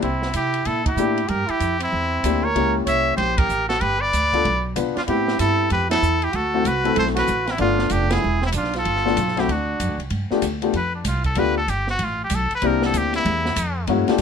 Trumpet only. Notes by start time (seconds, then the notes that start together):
0.01 C4
0.34 E4
0.65 E4
0.84 E4
1.27 G4
1.47 E4
1.80 C4
2.43 A#4
2.85 C#5
3.16 G4
3.36 G4
3.69 F#4
3.80 G4
3.99 B4
4.95 D4
5.07 E4
5.39 E4
5.71 G4
5.90 E4
6.21 E4
6.32 F#4
6.65 F#4
6.96 A4
7.15 F#4
7.48 C4
7.58 D4
7.91 D4
8.10 E4
8.42 C4
8.55 D4
8.76 F4
9.37 E4
9.51 D4